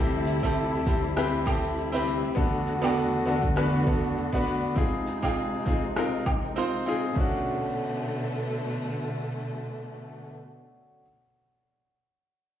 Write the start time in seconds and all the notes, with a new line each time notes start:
Already playing: D2 C3 G3 C4 E4 G4
0.00 A4
0.13 shaker
0.27 shaker
0.43 C4 E4 G4 A4, kick, shaker
0.57 shaker
0.73 shaker
0.86 C4 E4 G4 A4, kick, shaker
1.04 shaker
1.16 C4 E4 G4 B4, cross-stick, shaker
1.34 shaker
1.46 C4 E4 G4 A4, kick, low woodblock, shaker
1.64 shaker
1.78 shaker
1.92 C4 E4 G4 B4, shaker
2.07 shaker
2.24 shaker
2.35 E2 D3 A3 B3 D4 F#4 A4, kick, shaker
2.54 shaker
2.67 shaker
2.82 B3 D4 F#4 A4, low woodblock, shaker
2.97 shaker
3.13 shaker
3.26 B3 D4 F#4 A4, shaker
3.43 kick, shaker
3.56 B3 D4 F#4 B4, cross-stick, shaker
3.73 shaker
3.87 B3 D4 F#4 A4, kick, shaker
4.04 shaker
4.17 shaker
4.33 B3 D4 F#4 B4, kick, shaker
4.47 shaker
4.63 shaker
4.75 C3 G#3 C4 D#4 F4 G#4, kick, shaker
4.93 shaker
5.07 shaker
5.22 C4 D#4 F4 G#4, kick, low woodblock, shaker
5.37 shaker
5.53 shaker
5.66 C4 D#4 F4 G#4, kick, shaker
5.83 shaker
5.96 C4 D#4 F4 A#4, cross-stick, shaker
6.13 shaker
6.26 kick, low woodblock, shaker
6.43 shaker
6.56 C4 D#4 F4 C5, shaker
6.73 shaker
6.86 C4 D#4 F4 G#4, shaker
7.03 shaker
7.13 A3 C#4, kick
7.18 B2 D3 A3 D4 F#4